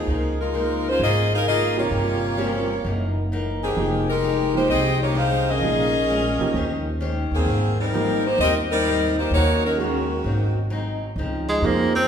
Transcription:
Already playing: F3 A#3 D#4 G#4
0.07 C#2 C#3 F3 A#3 D#4
0.40 G#3 D#4 F4 A#4
0.54 C#3 F3 A#3 D#4
0.88 G#3 C#4 F4 C5
0.99 G#1 C#3 F3 A#3 D#4 F4 G#4 D#5
1.34 D#4 G#4 A#4 F5
1.47 C#3 F3 A#3 D#4 F4 G#4 D#5
1.77 C3 G3 A#3 F4 G4 A#4 C#5
1.91 G1 G2 F3 A#3 C#4
2.37 G2 F3 G3 A#3 C4 C#4 F4 A#4
2.85 F#1 F#2 E3 A#3 D#4
3.32 F#2 E3 A#3 D#4
3.64 D#3 C4 G4 G#4
3.76 F1 F3 G#3 A#3 D#4 G4
4.09 G#3 D#4 G4 A#4
4.23 F3 G#3 D#4 G4
4.54 F3 G#3 A#3 D#4 G4 C5
4.69 C2 F3 G#3 C4 D#4 G4 G#4 D#5
5.03 A#3 D#4 G4 C#5
5.15 F3 G#3 D#4 G4 G#4 C5 F5
5.49 C#4 G#4 A#4 D#5
5.61 A#1 A#2 F3 G#3 A#3 C#4 D#4 F4 G#4
6.09 A#2 G#3 C#4 F4
6.39 A#2 F3 A#3 D#4 G4
6.54 D#2 D#3 C#4 G4 C5
7.00 D#3 C#4 G4 C5
7.31 D#2 D#3 A#3 C4 G#4
7.46 G#1 G#2 G3 C4 F4
7.80 G3 C4 D#4 A#4
7.93 G#2 F3 G3 A#3 C4 D#4 F4 G4
8.26 A#3 D#4 G4 C5
8.39 D#2 G#2 G3 C4 F4 G4 A#4 D#5
8.71 G3 C4 D#4 A#4
8.85 G#2 G3 C4 F4
9.18 A#3 D#4 G4 C5
9.31 D#2 D#3 A#3 C#4 D#4 F#4 C#5
9.64 F#3 C#4 D#4 A#4
9.78 D#3 G#3 A#3 C#4 F#4 A#4
10.24 G#1 G#2 F#3 C4 D#4
10.70 G#2 F#3 C4 D#4
11.16 C#2 C#3 F3 C4 D#4
11.49 G#3
11.62 F2 C#3 F3 A#3 C4 D#4 G#4 C5
11.66 A#3
11.95 C4

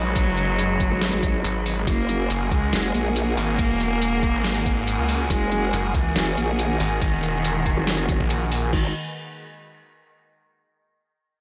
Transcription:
Already playing: A#1 F#3 G#3 D#4 B4
0.16 kick, closed hi-hat
0.27 F#1
0.37 closed hi-hat
0.59 closed hi-hat
0.80 kick, closed hi-hat
0.92 G#1
1.02 snare, closed hi-hat
1.13 G#1
1.23 kick, closed hi-hat
1.44 G#1, closed hi-hat
1.66 open hi-hat
1.87 F#1 A#3 F#4 G#4, kick, closed hi-hat, ride
2.09 closed hi-hat
2.30 F#1, closed hi-hat, ride
2.52 C#2 G#3, kick, closed hi-hat
2.73 F#1, snare, closed hi-hat, ride
2.94 A#1, closed hi-hat
3.16 A#3, closed hi-hat, ride
3.37 G#1, open hi-hat
3.59 kick, closed hi-hat, ride
3.70 E1
3.80 closed hi-hat
4.02 closed hi-hat, ride
4.23 kick, closed hi-hat
4.34 G#1
4.44 snare, closed hi-hat, ride
4.66 kick, closed hi-hat
4.87 closed hi-hat, ride
4.99 C#2
5.09 open hi-hat
5.30 F#1 G#3, kick, closed hi-hat, ride
5.52 closed hi-hat
5.73 F#1, closed hi-hat, ride
5.94 C#2 E3, kick, closed hi-hat
6.16 F#1, snare, closed hi-hat, ride
6.37 A#1, closed hi-hat
6.59 D#3, closed hi-hat, ride
6.80 G#1, open hi-hat
7.02 kick, closed hi-hat, ride
7.13 E1
7.23 closed hi-hat
7.44 closed hi-hat, ride
7.66 kick, closed hi-hat
7.77 F#1
7.87 snare, closed hi-hat, ride
8.09 kick, closed hi-hat
8.20 A#1, kick
8.30 closed hi-hat, ride
8.52 open hi-hat
8.73 G#1 D#3, kick, crash

